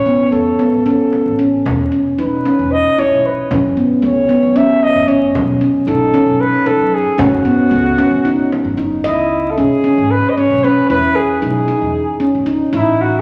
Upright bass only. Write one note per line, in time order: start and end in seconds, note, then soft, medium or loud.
0.32 0.54 E2 medium
0.72 0.94 A1 medium
1.26 1.58 A1 medium
1.65 1.87 E1 medium
2.19 2.41 E1 medium
2.59 2.81 E1 medium
3.11 3.33 B1 medium
3.51 3.73 F#1 loud
4.03 4.25 C#2 medium
4.43 4.65 F#1 medium
4.96 5.28 F#1 medium
5.35 5.57 B1 medium
5.87 6.09 B1 medium
6.26 6.48 B1 medium
6.79 7.01 F#2 medium
7.19 7.41 F#1 loud
7.72 7.94 C#2 medium
8.11 8.33 F#1 medium
8.65 8.98 F#1 medium
9.05 9.60 C#2 medium
9.59 9.92 C#3 medium
9.98 10.20 G#1 medium
10.50 10.72 B1 medium
10.90 11.12 E2 medium
11.43 11.64 B1 medium
11.82 12.03 E2 medium
12.35 12.56 C#2 medium
12.74 13.22 A1 loud